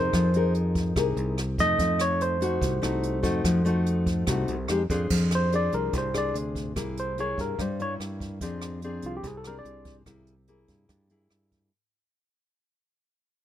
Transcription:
Already playing: fingered electric bass F2, nylon-string guitar C3 D#4 G#4 A#4, tine electric piano C5
0.13 fingered electric bass F2, nylon-string guitar F3, kick, cross-stick, closed hi-hat
0.34 nylon-string guitar D#4 G#4 A#4, closed hi-hat
0.54 closed hi-hat
0.75 kick, closed hi-hat
0.96 fingered electric bass C2, nylon-string guitar C3 D#4 G#4 A#4, kick, cross-stick, closed hi-hat
1.17 fingered electric bass C2, closed hi-hat
1.38 cross-stick, closed hi-hat
1.58 fingered electric bass F2, nylon-string guitar A3 D#4, tine electric piano D#5, kick, closed hi-hat
1.79 fingered electric bass F2, nylon-string guitar F3, kick, closed hi-hat
1.99 tine electric piano C#5, cross-stick, closed hi-hat
2.21 tine electric piano C5, closed hi-hat
2.41 nylon-string guitar A3 D#4 F#4, closed hi-hat
2.61 fingered electric bass C2, nylon-string guitar C3, kick, closed hi-hat
2.82 fingered electric bass C2, nylon-string guitar A3 D#4 F#4, cross-stick, closed hi-hat
3.03 closed hi-hat
3.23 fingered electric bass F2, nylon-string guitar A3 D#4 F#4, kick, closed hi-hat
3.44 fingered electric bass F2, nylon-string guitar F3, kick, cross-stick, closed hi-hat
3.65 nylon-string guitar A3 D#4 F#4, closed hi-hat
3.86 closed hi-hat
4.06 kick, closed hi-hat
4.27 fingered electric bass C2, nylon-string guitar C3 A3 D#4 F#4, kick, cross-stick, closed hi-hat
4.48 fingered electric bass C2, closed hi-hat
4.68 fingered electric bass F2, nylon-string guitar G#3 D#4 G4, cross-stick, closed hi-hat
4.90 fingered electric bass F2, nylon-string guitar D4 G#4 C5, kick, closed hi-hat
5.10 fingered electric bass F2, nylon-string guitar F3, kick, crash
5.31 cross-stick, closed hi-hat
5.35 tine electric piano C5
5.52 nylon-string guitar D4 G#4 C5, tine electric piano D5, closed hi-hat
5.72 fingered electric bass C2, tine electric piano A#4, closed hi-hat
5.93 fingered electric bass C2, nylon-string guitar C3, kick, closed hi-hat
5.98 tine electric piano C5
6.14 nylon-string guitar D4 G#4 C5, tine electric piano D5, cross-stick, closed hi-hat
6.34 fingered electric bass D2, closed hi-hat
6.55 kick, closed hi-hat
6.76 fingered electric bass C2, nylon-string guitar C3 A#3 E4 G#4, kick, cross-stick, closed hi-hat
6.97 tine electric piano C5, closed hi-hat
7.18 nylon-string guitar A#3 E4 G#4, tine electric piano C#5, closed hi-hat
7.38 fingered electric bass G2, tine electric piano A#4, kick, closed hi-hat
7.59 fingered electric bass G2, nylon-string guitar G3, tine electric piano C5, kick, cross-stick, closed hi-hat
7.79 nylon-string guitar A#3 E4, tine electric piano C#5, closed hi-hat
8.00 fingered electric bass G2, cross-stick, closed hi-hat
8.20 kick, closed hi-hat
8.41 fingered electric bass F2, nylon-string guitar F3 C4 D4 G#4, kick, closed hi-hat
8.61 cross-stick, closed hi-hat
8.82 nylon-string guitar C4 D4 G#4, closed hi-hat
9.02 fingered electric bass C2, closed hi-hat
9.06 tine electric piano F4
9.17 tine electric piano G4
9.23 fingered electric bass C2, nylon-string guitar C3, tine electric piano G#4, kick, closed hi-hat
9.37 tine electric piano A4
9.44 nylon-string guitar C4 D4 G#4, tine electric piano A#4, cross-stick, closed hi-hat
9.59 tine electric piano D5
9.65 fingered electric bass C2, closed hi-hat
9.85 kick, closed hi-hat
10.06 fingered electric bass C2, nylon-string guitar C3 A#3 E4 G#4, kick, cross-stick, closed hi-hat
10.27 closed hi-hat
10.47 nylon-string guitar A#3 E4 G#4, closed hi-hat
10.68 fingered electric bass G2, kick, closed hi-hat
10.89 fingered electric bass G2, kick, cross-stick, closed hi-hat
11.10 nylon-string guitar A#3 E4 G#4, closed hi-hat
11.30 fingered electric bass G2, cross-stick, closed hi-hat
11.52 kick, closed hi-hat

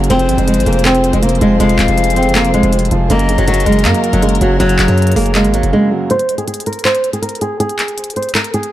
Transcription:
Already playing: felt piano F#2 C#3 F#3 G#3 A#3, string section G#4
0.04 closed hi-hat
0.10 808-style bass F1, felt piano F2, string section F3 F4 C5, nylon-string guitar C4, pan flute C5, closed hi-hat
0.19 closed hi-hat
0.29 808-style bass G#1, felt piano C3, closed hi-hat
0.38 808-style bass F1, nylon-string guitar G#3, closed hi-hat
0.48 nylon-string guitar G#3, closed hi-hat
0.54 808-style bass G#1, closed hi-hat
0.60 closed hi-hat
0.66 808-style bass F1, felt piano G#3, nylon-string guitar A#3, closed hi-hat
0.73 closed hi-hat
0.79 closed hi-hat
0.85 nylon-string guitar C4, felt piano C4, clap, closed hi-hat
0.95 closed hi-hat
1.04 closed hi-hat
1.13 808-style bass F1, nylon-string guitar G#3, closed hi-hat
1.22 felt piano C3, nylon-string guitar A#3, closed hi-hat
1.29 closed hi-hat
1.35 closed hi-hat
1.41 808-style bass F1, felt piano F3, nylon-string guitar G#3, closed hi-hat
1.60 808-style bass F1, felt piano F2, nylon-string guitar G#3, pan flute F5, closed hi-hat
1.69 closed hi-hat
1.79 808-style bass D#1, felt piano C3, clap, closed hi-hat
1.88 808-style bass F1, closed hi-hat
1.98 closed hi-hat
2.04 closed hi-hat
2.10 closed hi-hat
2.16 felt piano G#3, nylon-string guitar C4, closed hi-hat
2.23 808-style bass F#1, closed hi-hat
2.29 closed hi-hat
2.35 nylon-string guitar A#3, felt piano C4, clap, closed hi-hat
2.44 808-style bass F1, closed hi-hat
2.54 nylon-string guitar G#3, closed hi-hat
2.63 808-style bass F1, closed hi-hat
2.73 felt piano C3, closed hi-hat
2.79 closed hi-hat
2.85 closed hi-hat
2.91 808-style bass F1, felt piano F3, closed hi-hat
3.10 808-style bass F#1, felt piano F#2, string section F#3 F#4 A#4, nylon-string guitar A#3, pan flute D#5, closed hi-hat
3.19 closed hi-hat
3.29 felt piano C#3, closed hi-hat
3.38 808-style bass F#1, nylon-string guitar F#3, closed hi-hat
3.48 nylon-string guitar F#3, closed hi-hat
3.54 closed hi-hat
3.60 closed hi-hat
3.66 808-style bass F#1, nylon-string guitar G#3, felt piano G#3, closed hi-hat
3.73 closed hi-hat
3.79 closed hi-hat
3.85 808-style bass F#2, felt piano A#3, nylon-string guitar A#3, clap, closed hi-hat
3.94 closed hi-hat
4.04 closed hi-hat
4.13 808-style bass F#1, nylon-string guitar F#3, closed hi-hat
4.22 felt piano C#3, nylon-string guitar G#3, closed hi-hat
4.29 closed hi-hat
4.35 closed hi-hat
4.41 808-style bass F#1, felt piano F#3, nylon-string guitar F#3, closed hi-hat
4.60 808-style bass F#1, felt piano F#2, nylon-string guitar F#3, pan flute C#5, closed hi-hat
4.69 closed hi-hat
4.79 808-style bass F#1, felt piano C#3, clap, closed hi-hat
4.88 808-style bass F#2, closed hi-hat
4.98 closed hi-hat
5.02 closed hi-hat
5.07 closed hi-hat
5.12 closed hi-hat
5.16 808-style bass F#1, felt piano G#3, nylon-string guitar A#3, open hi-hat
5.26 closed hi-hat
5.35 nylon-string guitar G#3, felt piano A#3, clap, closed hi-hat
5.44 808-style bass G#1, closed hi-hat
5.54 nylon-string guitar F#3, closed hi-hat
5.63 808-style bass F#1, closed hi-hat
5.73 felt piano C#3, nylon-string guitar G#3
5.91 felt piano F#3
6.10 nylon-string guitar C5, closed hi-hat
6.19 closed hi-hat
6.29 closed hi-hat
6.38 nylon-string guitar G#4, closed hi-hat
6.48 nylon-string guitar G#4, closed hi-hat
6.54 closed hi-hat
6.60 closed hi-hat
6.66 nylon-string guitar A#4, closed hi-hat
6.73 closed hi-hat
6.79 closed hi-hat
6.85 nylon-string guitar C5, clap, closed hi-hat
6.95 closed hi-hat
7.04 closed hi-hat
7.13 nylon-string guitar G#4, closed hi-hat
7.22 nylon-string guitar A#4, closed hi-hat
7.29 closed hi-hat
7.35 closed hi-hat
7.41 nylon-string guitar G#4, closed hi-hat
7.60 nylon-string guitar G#4, closed hi-hat
7.69 closed hi-hat
7.79 clap, closed hi-hat
7.88 closed hi-hat
7.98 closed hi-hat
8.04 closed hi-hat
8.10 closed hi-hat
8.16 nylon-string guitar C5, closed hi-hat
8.23 closed hi-hat
8.29 closed hi-hat
8.35 nylon-string guitar A#4, clap, closed hi-hat
8.44 closed hi-hat
8.54 nylon-string guitar G#4, closed hi-hat
8.63 closed hi-hat

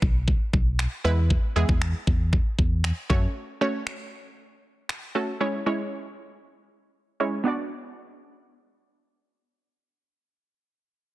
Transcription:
Already playing: synth pluck F#3 B3 D4 B4
0.02 fm bass B1, kick
0.28 kick
0.53 fm bass B1, kick
0.79 finger snap
1.04 fm bass E2, synth pluck G#3 B3 E4 B4
1.30 kick
1.56 fm bass E2, synth pluck G#3 B3 E4 G#4
1.69 fm bass E2, kick
1.82 finger snap
2.07 fm bass E2, kick
2.33 kick
2.59 fm bass E2, kick
2.84 finger snap
3.10 fm bass F#2, synth pluck A3 C#4 F#4 C#5, kick
3.61 synth pluck A3 C#4 F#4 C#5
3.87 finger snap
4.89 finger snap
5.15 synth pluck A3 C#4 F#4 A4
5.40 synth pluck G#3 C#4 E4 C#5
5.66 synth pluck G#3 C#4 E4 C#5
7.20 synth pluck G#3 C#4 E4 C#5
7.44 synth pluck B3 D4 F#4
7.48 synth pluck D5

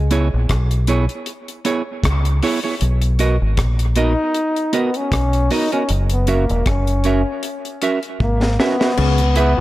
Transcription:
Already playing: fingered electric bass C#2
0.11 clean electric guitar B3 E4 G#4 C#5, closed hi-hat
0.34 fingered electric bass A#1
0.49 fingered electric bass B1, kick, cross-stick, closed hi-hat
0.71 closed hi-hat
0.87 clean electric guitar B3 E4 G#4 C#5, closed hi-hat
1.09 closed hi-hat
1.26 closed hi-hat
1.48 closed hi-hat
1.65 clean electric guitar B3 E4 G#4 C#5, closed hi-hat
2.04 fingered electric bass C#2, kick, cross-stick, closed hi-hat
2.25 closed hi-hat
2.43 clean electric guitar B3 E4 G#4 C#5, open hi-hat
2.64 clean electric guitar B3 E4 G#4 C#5
2.81 fingered electric bass B1, closed hi-hat
3.02 closed hi-hat
3.19 clean electric guitar B3 F#4 A#4 D#5, closed hi-hat
3.42 fingered electric bass G#1
3.57 fingered electric bass A#1, kick, cross-stick, closed hi-hat
3.79 closed hi-hat
3.96 clean electric guitar B3 F#4 A#4 D#5, trombone D#4, closed hi-hat
4.35 closed hi-hat
4.56 closed hi-hat
4.73 clean electric guitar B3 F#4 A#4 D#5, trombone B3, closed hi-hat
4.94 trombone C#4, closed hi-hat
5.12 fingered electric bass B1, kick, cross-stick, closed hi-hat
5.33 closed hi-hat
5.50 clean electric guitar B3 F#4 A#4 D#5, trombone D#4, open hi-hat
5.72 clean electric guitar B3 F#4 A#4 D#5, trombone C#4, closed hi-hat
5.89 fingered electric bass F#1, closed hi-hat
6.10 trombone B3, closed hi-hat
6.27 trombone A#3, clean electric guitar C#4 F#4 A#4 E5, closed hi-hat
6.50 fingered electric bass E1, closed hi-hat
6.66 fingered electric bass F#1, trombone C#4, kick, cross-stick, closed hi-hat
6.87 closed hi-hat
7.04 clean electric guitar C#4 F#4 A#4 E5, closed hi-hat
7.43 closed hi-hat
7.65 closed hi-hat
7.82 clean electric guitar C#4 F#4 A#4 E5, closed hi-hat
8.03 closed hi-hat
8.20 fingered electric bass G#1, trombone A#3, kick
8.42 snare
8.59 trombone B3, clean electric guitar C#4 F#4 A#4 E5, snare
8.80 clean electric guitar C#4 F#4 A#4 E5, snare
8.97 fingered electric bass C#2, clav C#3, crash
9.18 closed hi-hat
9.36 trombone B3, clean electric guitar E4 G#4 B4 E5, closed hi-hat

